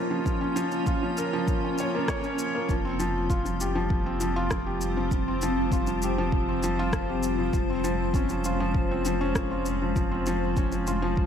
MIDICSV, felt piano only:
0, 0, Header, 1, 2, 480
1, 0, Start_track
1, 0, Key_signature, -4, "minor"
1, 0, Tempo, 606061
1, 210, Time_signature, 4, 2, 24, 8
1, 8920, End_track
2, 0, Start_track
2, 0, Title_t, "Felt piano"
2, 0, Program_c, 0, 0
2, 0, Control_c, 0, 64, 127
2, 0, Note_on_c, 0, 53, 80
2, 0, Note_on_c, 0, 61, 77
2, 0, Note_on_c, 0, 65, 98
2, 0, Note_on_c, 0, 70, 67
2, 85, Note_off_c, 0, 53, 0
2, 85, Note_on_c, 0, 53, 81
2, 156, Note_off_c, 0, 53, 0
2, 204, Note_on_c, 0, 53, 82
2, 321, Note_off_c, 0, 53, 0
2, 325, Note_off_c, 0, 61, 0
2, 325, Note_on_c, 0, 61, 74
2, 441, Note_off_c, 0, 61, 0
2, 443, Note_on_c, 0, 53, 107
2, 560, Note_off_c, 0, 53, 0
2, 684, Note_off_c, 0, 65, 0
2, 684, Note_on_c, 0, 65, 77
2, 801, Note_off_c, 0, 65, 0
2, 815, Note_on_c, 0, 53, 83
2, 926, Note_off_c, 0, 53, 0
2, 933, Note_off_c, 0, 70, 0
2, 933, Note_on_c, 0, 70, 73
2, 1046, Note_off_c, 0, 70, 0
2, 1056, Note_on_c, 0, 53, 100
2, 1121, Note_off_c, 0, 53, 0
2, 1302, Note_on_c, 0, 61, 72
2, 1410, Note_off_c, 0, 61, 0
2, 1426, Note_on_c, 0, 73, 72
2, 1532, Note_off_c, 0, 73, 0
2, 1543, Note_on_c, 0, 58, 80
2, 1650, Note_off_c, 0, 58, 0
2, 1660, Note_on_c, 0, 73, 99
2, 1723, Note_off_c, 0, 73, 0
2, 1778, Note_on_c, 0, 61, 69
2, 1842, Note_off_c, 0, 61, 0
2, 2017, Note_on_c, 0, 58, 80
2, 2128, Note_off_c, 0, 58, 0
2, 2137, Note_on_c, 0, 53, 76
2, 2139, Control_c, 0, 64, 0
2, 2248, Note_off_c, 0, 53, 0
2, 2257, Control_c, 0, 64, 127
2, 2257, Note_on_c, 0, 60, 73
2, 2367, Note_off_c, 0, 60, 0
2, 2373, Note_on_c, 0, 53, 100
2, 2485, Note_off_c, 0, 53, 0
2, 2615, Note_on_c, 0, 65, 79
2, 2727, Note_off_c, 0, 65, 0
2, 2732, Note_on_c, 0, 53, 79
2, 2845, Note_off_c, 0, 53, 0
2, 2859, Note_on_c, 0, 67, 74
2, 2968, Note_off_c, 0, 67, 0
2, 2973, Note_on_c, 0, 53, 97
2, 3040, Note_off_c, 0, 53, 0
2, 3216, Note_on_c, 0, 60, 80
2, 3327, Note_off_c, 0, 60, 0
2, 3332, Note_on_c, 0, 53, 90
2, 3445, Note_off_c, 0, 53, 0
2, 3455, Note_on_c, 0, 65, 98
2, 3521, Note_off_c, 0, 65, 0
2, 3581, Note_on_c, 0, 53, 80
2, 3689, Note_off_c, 0, 53, 0
2, 3693, Note_on_c, 0, 67, 71
2, 3806, Note_off_c, 0, 67, 0
2, 3937, Note_on_c, 0, 53, 79
2, 4002, Note_off_c, 0, 53, 0
2, 4060, Note_on_c, 0, 53, 75
2, 4169, Note_off_c, 0, 53, 0
2, 4181, Note_on_c, 0, 60, 72
2, 4289, Note_off_c, 0, 60, 0
2, 4299, Note_on_c, 0, 53, 106
2, 4409, Note_off_c, 0, 53, 0
2, 4536, Note_on_c, 0, 65, 83
2, 4647, Note_off_c, 0, 65, 0
2, 4653, Note_on_c, 0, 53, 80
2, 4765, Note_off_c, 0, 53, 0
2, 4779, Note_on_c, 0, 67, 79
2, 4888, Note_off_c, 0, 67, 0
2, 4897, Note_on_c, 0, 53, 100
2, 4962, Note_off_c, 0, 53, 0
2, 5136, Note_on_c, 0, 60, 76
2, 5247, Note_off_c, 0, 60, 0
2, 5256, Note_on_c, 0, 53, 103
2, 5367, Note_off_c, 0, 53, 0
2, 5379, Note_on_c, 0, 65, 102
2, 5443, Note_off_c, 0, 65, 0
2, 5496, Note_on_c, 0, 53, 84
2, 5607, Note_off_c, 0, 53, 0
2, 5617, Note_on_c, 0, 67, 69
2, 5728, Note_off_c, 0, 67, 0
2, 5849, Note_on_c, 0, 53, 75
2, 5918, Note_off_c, 0, 53, 0
2, 5969, Note_on_c, 0, 53, 78
2, 5981, Control_c, 0, 64, 0
2, 6084, Note_off_c, 0, 53, 0
2, 6097, Note_on_c, 0, 60, 72
2, 6098, Control_c, 0, 64, 127
2, 6207, Note_off_c, 0, 60, 0
2, 6210, Note_on_c, 0, 53, 102
2, 6324, Note_off_c, 0, 53, 0
2, 6458, Note_on_c, 0, 61, 82
2, 6568, Note_off_c, 0, 61, 0
2, 6578, Note_on_c, 0, 53, 83
2, 6688, Note_off_c, 0, 53, 0
2, 6699, Note_on_c, 0, 65, 76
2, 6808, Note_off_c, 0, 65, 0
2, 6814, Note_on_c, 0, 53, 98
2, 6880, Note_off_c, 0, 53, 0
2, 7059, Note_on_c, 0, 60, 74
2, 7168, Note_off_c, 0, 60, 0
2, 7176, Note_on_c, 0, 53, 97
2, 7287, Note_off_c, 0, 53, 0
2, 7293, Note_on_c, 0, 61, 94
2, 7360, Note_off_c, 0, 61, 0
2, 7414, Note_on_c, 0, 53, 83
2, 7526, Note_off_c, 0, 53, 0
2, 7535, Note_on_c, 0, 65, 68
2, 7647, Note_off_c, 0, 65, 0
2, 7775, Note_on_c, 0, 53, 77
2, 7841, Note_off_c, 0, 53, 0
2, 7889, Note_on_c, 0, 53, 80
2, 8003, Note_off_c, 0, 53, 0
2, 8011, Note_on_c, 0, 60, 72
2, 8124, Note_off_c, 0, 60, 0
2, 8134, Note_on_c, 0, 53, 107
2, 8246, Note_off_c, 0, 53, 0
2, 8376, Note_on_c, 0, 61, 82
2, 8487, Note_off_c, 0, 61, 0
2, 8493, Note_on_c, 0, 53, 77
2, 8605, Note_off_c, 0, 53, 0
2, 8615, Note_on_c, 0, 65, 75
2, 8726, Note_off_c, 0, 65, 0
2, 8731, Note_on_c, 0, 53, 104
2, 8799, Note_off_c, 0, 53, 0
2, 8920, End_track
0, 0, End_of_file